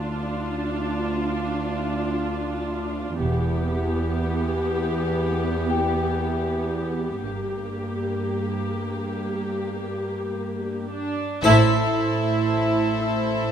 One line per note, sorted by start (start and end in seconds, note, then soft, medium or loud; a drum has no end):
0.00 3.16 D2 soft
0.00 3.16 D4 soft
0.00 3.16 F4 soft
3.20 4.15 E1 medium
3.20 7.21 E2 soft
3.20 7.21 B3 soft
3.20 7.21 G4 medium
5.70 8.78 G5 soft
7.25 8.25 G1 soft
7.25 11.23 G2 soft
7.25 10.87 A#3 soft
7.25 10.87 G4 soft
10.91 11.40 D4 soft
11.43 13.52 A1 medium
11.43 13.52 A2 medium
11.43 13.48 E4 medium
11.43 13.52 A4 medium
11.43 13.52 C5 medium
11.43 13.52 E5 medium
11.43 triangle soft
13.01 13.52 E4 soft
13.01 13.52 E6 soft